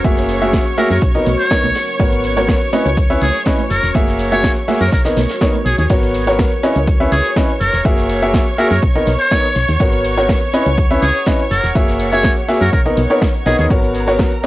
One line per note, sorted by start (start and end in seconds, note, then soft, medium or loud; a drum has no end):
0.00 6.19 C#4 medium
0.00 6.19 F#4 medium
0.00 5.89 C#5 medium
0.00 5.89 C#6 medium
0.05 0.61 F#1 loud
0.05 0.39 A#3 medium
0.05 0.39 F#4 medium
0.05 0.39 G#4 medium
0.05 0.39 E5 loud
0.05 kick loud
0.05 closed hi-hat medium
0.05 tambourine soft
0.05 high conga medium
0.05 cabasa medium
0.17 snare soft
0.17 closed hi-hat medium
0.17 cabasa soft
0.29 closed hi-hat medium
0.29 open hi-hat loud
0.29 tambourine medium
0.35 2.73 A#4 medium
0.41 0.62 A#3 medium
0.41 0.62 F#4 medium
0.41 0.62 G#4 medium
0.41 0.62 E5 loud
0.41 closed hi-hat medium
0.41 tambourine soft
0.41 high conga medium
0.41 cabasa medium
0.53 kick loud
0.53 snare loud
0.53 closed hi-hat medium
0.53 tambourine soft
0.53 cabasa medium
0.66 closed hi-hat soft
0.66 cabasa soft
0.78 0.91 A#3 medium
0.78 0.91 F#4 medium
0.78 0.91 G#4 medium
0.78 0.86 A#4 medium
0.78 0.91 E5 loud
0.78 open hi-hat medium
0.78 tambourine medium
0.78 high conga medium
0.90 0.99 F#2 loud
0.90 0.98 A#4 medium
0.90 snare soft
0.90 closed hi-hat medium
0.90 tambourine soft
0.90 cabasa medium
1.02 1.20 B1 medium
1.02 kick loud
1.02 closed hi-hat medium
1.02 tambourine soft
1.02 cabasa medium
1.15 1.27 B3 medium
1.15 1.27 D#4 medium
1.15 1.27 A#4 medium
1.15 1.27 D#5 loud
1.15 closed hi-hat soft
1.15 cabasa soft
1.26 1.36 B1 loud
1.26 closed hi-hat medium
1.26 open hi-hat loud
1.26 tambourine medium
1.26 high conga medium
1.39 1.88 C#5 loud
1.39 closed hi-hat medium
1.39 tambourine medium
1.39 cabasa medium
1.50 1.64 B3 medium
1.50 1.64 D#4 medium
1.50 1.64 A#4 medium
1.50 1.64 C#5 loud
1.50 kick loud
1.50 snare loud
1.50 closed hi-hat medium
1.50 tambourine soft
1.50 cabasa medium
1.64 1.72 B1 medium
1.64 closed hi-hat medium
1.64 high conga medium
1.64 cabasa soft
1.75 snare loud
1.75 closed hi-hat medium
1.75 open hi-hat medium
1.75 tambourine loud
1.87 closed hi-hat soft
1.87 closed hi-hat medium
1.87 tambourine medium
1.87 cabasa medium
2.00 2.56 G#1 loud
2.00 2.34 B3 medium
2.00 2.34 F#4 medium
2.00 2.34 A#4 medium
2.00 2.34 C#5 loud
2.00 kick loud
2.00 closed hi-hat medium
2.00 tambourine soft
2.00 high conga medium
2.00 cabasa medium
2.12 closed hi-hat soft
2.12 closed hi-hat medium
2.12 cabasa soft
2.24 closed hi-hat medium
2.24 open hi-hat loud
2.24 tambourine medium
2.37 2.57 B3 medium
2.37 2.57 F#4 medium
2.37 2.57 A#4 medium
2.37 2.57 C#5 loud
2.37 snare soft
2.37 closed hi-hat medium
2.37 tambourine medium
2.37 high conga medium
2.37 cabasa medium
2.48 kick loud
2.48 snare loud
2.48 closed hi-hat medium
2.48 tambourine soft
2.48 cabasa medium
2.61 closed hi-hat soft
2.61 cabasa soft
2.73 2.86 C#4 medium
2.73 2.86 E4 medium
2.73 2.86 B4 medium
2.73 2.86 D#5 loud
2.73 closed hi-hat medium
2.73 open hi-hat medium
2.73 tambourine medium
2.73 high conga medium
2.86 3.17 C#2 medium
2.86 closed hi-hat medium
2.86 tambourine soft
2.86 cabasa medium
2.97 kick loud
2.97 closed hi-hat medium
2.97 tambourine soft
2.97 cabasa medium
3.10 3.22 C#4 medium
3.10 3.22 E4 medium
3.10 3.22 B4 medium
3.10 3.22 E5 loud
3.10 closed hi-hat soft
3.10 cabasa soft
3.21 3.31 C#2 medium
3.21 3.41 G#4 medium
3.21 closed hi-hat medium
3.21 open hi-hat medium
3.21 tambourine medium
3.21 high conga medium
3.34 closed hi-hat medium
3.34 tambourine medium
3.34 cabasa medium
3.45 3.59 C#4 medium
3.45 3.59 E4 medium
3.45 3.59 B4 medium
3.45 3.59 D#5 loud
3.45 kick medium
3.45 snare loud
3.45 closed hi-hat medium
3.45 tambourine soft
3.45 cabasa medium
3.59 closed hi-hat medium
3.59 high conga medium
3.59 cabasa soft
3.70 3.80 F#1 medium
3.70 3.90 A#4 medium
3.70 closed hi-hat medium
3.70 open hi-hat medium
3.70 tambourine medium
3.83 3.92 E1 medium
3.83 snare soft
3.83 closed hi-hat medium
3.83 tambourine medium
3.83 cabasa medium
3.95 4.51 F#1 medium
3.95 4.29 A#3 medium
3.95 4.29 F#4 medium
3.95 4.29 G#4 medium
3.95 4.29 E5 loud
3.95 kick loud
3.95 closed hi-hat medium
3.95 tambourine soft
3.95 high conga medium
3.95 cabasa medium
4.08 snare soft
4.08 closed hi-hat medium
4.08 cabasa soft
4.19 closed hi-hat medium
4.19 open hi-hat loud
4.19 tambourine loud
4.26 6.19 A#4 medium
4.32 4.52 A#3 medium
4.32 4.52 F#4 medium
4.32 4.52 G#4 medium
4.32 4.51 C#5 loud
4.32 4.52 E5 loud
4.32 closed hi-hat medium
4.32 tambourine medium
4.32 high conga medium
4.32 cabasa medium
4.44 kick loud
4.44 snare loud
4.44 closed hi-hat medium
4.44 tambourine soft
4.44 cabasa medium
4.56 closed hi-hat soft
4.56 cabasa soft
4.68 4.81 A#3 medium
4.68 4.81 F#4 medium
4.68 4.81 G#4 medium
4.68 4.81 E5 loud
4.68 open hi-hat medium
4.68 tambourine medium
4.68 high conga medium
4.80 4.89 F#2 medium
4.80 4.88 A#4 medium
4.80 snare soft
4.80 closed hi-hat medium
4.80 tambourine soft
4.80 cabasa medium
4.92 5.11 B1 medium
4.92 5.01 A#4 medium
4.92 kick loud
4.92 snare medium
4.92 closed hi-hat medium
4.92 tambourine soft
4.92 cabasa medium
5.05 5.17 B3 medium
5.05 5.17 D#4 medium
5.05 5.17 A#4 medium
5.05 5.17 D#5 loud
5.05 snare loud
5.05 closed hi-hat medium
5.05 closed hi-hat soft
5.05 cabasa soft
5.17 5.26 B1 loud
5.17 snare loud
5.17 closed hi-hat medium
5.17 open hi-hat loud
5.17 tambourine medium
5.17 high conga medium
5.29 snare medium
5.29 snare soft
5.29 closed hi-hat medium
5.29 tambourine medium
5.29 cabasa medium
5.41 5.54 B3 medium
5.41 5.54 D#4 medium
5.41 5.54 A#4 medium
5.41 5.54 C#5 loud
5.41 kick loud
5.41 snare loud
5.41 closed hi-hat medium
5.41 tambourine soft
5.41 cabasa medium
5.54 closed hi-hat medium
5.54 high conga medium
5.54 cabasa soft
5.66 5.75 B1 medium
5.66 5.74 G#4 medium
5.66 closed hi-hat medium
5.66 open hi-hat medium
5.66 tambourine loud
5.78 5.87 D#2 loud
5.78 5.86 G#4 medium
5.78 closed hi-hat medium
5.78 closed hi-hat soft
5.78 tambourine medium
5.78 cabasa medium
5.90 6.46 G#1 loud
5.90 6.24 B3 medium
5.90 6.24 F#4 medium
5.90 6.24 A#4 medium
5.90 13.72 C#5 medium
5.90 6.24 C#5 loud
5.90 13.72 C#6 medium
5.90 kick loud
5.90 closed hi-hat loud
5.90 crash loud
5.90 cabasa medium
6.03 closed hi-hat soft
6.03 closed hi-hat medium
6.03 cabasa soft
6.14 closed hi-hat medium
6.14 open hi-hat loud
6.27 6.47 B3 loud
6.27 6.47 F#4 medium
6.27 6.47 A#4 medium
6.27 6.47 C#5 loud
6.27 snare soft
6.27 closed hi-hat medium
6.27 cabasa medium
6.39 kick loud
6.39 snare loud
6.39 closed hi-hat loud
6.39 cabasa medium
6.52 closed hi-hat soft
6.52 cabasa soft
6.63 6.76 C#4 medium
6.63 6.76 E4 medium
6.63 6.76 B4 medium
6.63 6.76 D#5 loud
6.63 closed hi-hat medium
6.63 open hi-hat medium
6.76 7.07 C#2 medium
6.76 closed hi-hat medium
6.76 cabasa medium
6.87 kick loud
6.87 closed hi-hat medium
6.87 cabasa medium
7.00 7.12 C#4 medium
7.00 7.12 E4 medium
7.00 7.12 B4 medium
7.00 7.12 E5 loud
7.00 closed hi-hat soft
7.00 cabasa soft
7.12 7.21 C#2 loud
7.12 7.32 G#4 medium
7.12 closed hi-hat medium
7.12 open hi-hat loud
7.25 closed hi-hat medium
7.25 cabasa medium
7.36 7.49 C#4 medium
7.36 7.49 E4 medium
7.36 7.49 B4 medium
7.36 7.49 D#5 loud
7.36 kick loud
7.36 snare loud
7.36 closed hi-hat medium
7.36 cabasa medium
7.49 closed hi-hat medium
7.49 cabasa soft
7.61 7.70 F#1 medium
7.61 7.81 A#4 medium
7.61 14.47 C#5 medium
7.61 closed hi-hat medium
7.61 open hi-hat medium
7.73 7.82 E1 medium
7.73 snare medium
7.73 closed hi-hat medium
7.73 cabasa medium
7.85 8.41 F#1 loud
7.85 8.19 A#3 medium
7.85 8.19 F#4 medium
7.85 8.19 G#4 medium
7.85 8.19 E5 loud
7.85 kick loud
7.85 closed hi-hat loud
7.85 cabasa medium
7.97 snare soft
7.97 closed hi-hat medium
7.97 cabasa soft
8.10 closed hi-hat medium
8.10 open hi-hat loud
8.16 14.47 F#5 medium
8.16 10.53 A#5 medium
8.22 8.42 A#3 medium
8.22 8.42 F#4 medium
8.22 8.42 G#4 medium
8.22 8.42 E5 loud
8.22 closed hi-hat medium
8.22 cabasa medium
8.34 kick loud
8.34 snare loud
8.34 closed hi-hat medium
8.34 cabasa medium
8.47 closed hi-hat soft
8.47 cabasa soft
8.58 8.71 A#3 medium
8.58 8.71 F#4 medium
8.58 8.71 G#4 medium
8.58 8.66 A#4 medium
8.58 8.71 E5 loud
8.58 open hi-hat medium
8.71 8.80 F#2 loud
8.71 8.78 A#4 medium
8.71 snare soft
8.71 closed hi-hat medium
8.71 cabasa medium
8.82 9.01 B1 medium
8.82 kick loud
8.82 closed hi-hat medium
8.82 cabasa medium
8.95 9.08 B3 medium
8.95 9.08 D#4 medium
8.95 9.08 A#4 medium
8.95 9.08 D#5 loud
8.95 closed hi-hat soft
8.95 cabasa soft
9.07 9.16 B1 loud
9.07 closed hi-hat medium
9.07 open hi-hat loud
9.20 9.69 C#5 loud
9.20 closed hi-hat medium
9.20 cabasa medium
9.31 9.45 B3 medium
9.31 9.45 D#4 medium
9.31 9.45 A#4 medium
9.31 9.45 C#5 loud
9.31 kick loud
9.31 snare loud
9.31 closed hi-hat medium
9.31 cabasa medium
9.44 closed hi-hat medium
9.44 cabasa soft
9.56 9.65 B1 medium
9.56 closed hi-hat medium
9.56 open hi-hat loud
9.69 9.77 D#2 loud
9.69 closed hi-hat medium
9.69 closed hi-hat soft
9.69 cabasa medium
9.80 10.36 G#1 loud
9.80 10.14 B3 medium
9.80 10.14 F#4 medium
9.80 10.14 A#4 medium
9.80 10.14 C#5 loud
9.80 kick loud
9.80 closed hi-hat medium
9.80 cabasa medium
9.93 closed hi-hat soft
9.93 closed hi-hat medium
9.93 cabasa soft
10.05 closed hi-hat medium
10.05 open hi-hat loud
10.17 10.37 B3 medium
10.17 10.37 F#4 medium
10.17 10.37 A#4 medium
10.17 10.37 C#5 loud
10.17 snare soft
10.17 closed hi-hat medium
10.17 cabasa medium
10.29 kick loud
10.29 snare loud
10.29 closed hi-hat medium
10.29 cabasa medium
10.42 closed hi-hat soft
10.42 cabasa soft
10.53 10.67 C#4 loud
10.53 10.67 E4 medium
10.53 10.67 B4 medium
10.53 10.67 D#5 loud
10.53 closed hi-hat medium
10.53 open hi-hat loud
10.66 10.97 C#2 loud
10.66 closed hi-hat medium
10.66 cabasa medium
10.78 kick loud
10.78 closed hi-hat medium
10.78 cabasa medium
10.91 11.03 C#4 medium
10.91 11.03 E4 medium
10.91 11.03 B4 medium
10.91 11.03 E5 loud
10.91 closed hi-hat soft
10.91 cabasa soft
11.02 11.12 C#2 medium
11.02 11.22 G#4 medium
11.02 closed hi-hat medium
11.02 open hi-hat loud
11.15 closed hi-hat medium
11.15 cabasa medium
11.26 11.40 C#4 medium
11.26 11.40 E4 medium
11.26 11.40 B4 medium
11.26 11.40 D#5 loud
11.26 kick loud
11.26 snare loud
11.26 closed hi-hat medium
11.26 cabasa medium
11.39 closed hi-hat medium
11.39 cabasa soft
11.51 11.60 F#1 medium
11.51 11.71 A#4 medium
11.51 closed hi-hat medium
11.51 open hi-hat loud
11.64 11.72 E1 medium
11.64 snare soft
11.64 closed hi-hat medium
11.64 cabasa medium
11.75 12.31 F#1 medium
11.75 12.10 A#3 medium
11.75 12.09 F#4 medium
11.75 12.09 G#4 medium
11.75 12.09 E5 loud
11.75 kick loud
11.75 closed hi-hat loud
11.75 cabasa medium
11.88 snare soft
11.88 closed hi-hat medium
11.88 cabasa soft
11.99 closed hi-hat medium
11.99 open hi-hat loud
12.06 14.44 A#5 medium
12.12 12.32 A#3 medium
12.12 12.32 F#4 medium
12.12 12.32 G#4 medium
12.12 12.32 C#5 medium
12.12 12.32 E5 loud
12.12 closed hi-hat medium
12.12 cabasa medium
12.23 kick loud
12.23 snare loud
12.23 closed hi-hat loud
12.23 cabasa medium
12.37 closed hi-hat soft
12.37 cabasa soft
12.48 12.62 A#3 medium
12.48 12.62 F#4 medium
12.48 12.62 G#4 medium
12.48 12.62 E5 loud
12.48 open hi-hat loud
12.48 open hi-hat medium
12.61 12.70 F#2 loud
12.61 12.69 A#4 medium
12.61 snare soft
12.61 closed hi-hat medium
12.61 cabasa medium
12.73 12.91 B1 medium
12.73 12.81 A#4 medium
12.73 kick loud
12.73 closed hi-hat medium
12.73 cabasa medium
12.86 12.98 B3 medium
12.86 12.98 D#4 medium
12.86 12.98 A#4 medium
12.86 12.98 D#5 loud
12.86 closed hi-hat soft
12.86 cabasa soft
12.97 13.07 B1 loud
12.97 closed hi-hat medium
12.97 open hi-hat loud
13.10 13.22 B3 medium
13.10 13.22 D#4 medium
13.10 13.22 A#4 medium
13.10 13.22 C#5 loud
13.10 closed hi-hat medium
13.10 cabasa medium
13.22 kick loud
13.22 snare loud
13.22 closed hi-hat medium
13.22 cabasa medium
13.34 closed hi-hat medium
13.34 cabasa soft
13.46 13.55 B1 medium
13.46 13.68 B3 medium
13.46 13.68 D#4 medium
13.46 13.54 G#4 medium
13.46 13.68 A#4 medium
13.46 13.68 D#5 loud
13.46 closed hi-hat medium
13.46 open hi-hat loud
13.59 13.67 D#2 loud
13.59 13.66 G#4 medium
13.59 closed hi-hat medium
13.59 closed hi-hat soft
13.59 cabasa medium
13.70 14.26 G#1 loud
13.70 14.05 B3 medium
13.70 14.05 F#4 medium
13.70 14.47 A#4 medium
13.70 14.05 A#4 medium
13.70 14.05 C#5 loud
13.70 14.47 A#5 medium
13.70 kick loud
13.70 closed hi-hat medium
13.70 cabasa medium
13.83 closed hi-hat medium
13.83 closed hi-hat soft
13.83 cabasa soft
13.95 closed hi-hat medium
13.95 open hi-hat loud
14.08 14.28 B3 loud
14.08 14.28 F#4 medium
14.08 14.28 A#4 medium
14.08 14.28 C#5 loud
14.08 snare soft
14.08 closed hi-hat medium
14.08 cabasa medium
14.19 kick loud
14.19 snare loud
14.19 closed hi-hat medium
14.19 cabasa medium
14.32 closed hi-hat soft
14.32 cabasa soft
14.43 closed hi-hat medium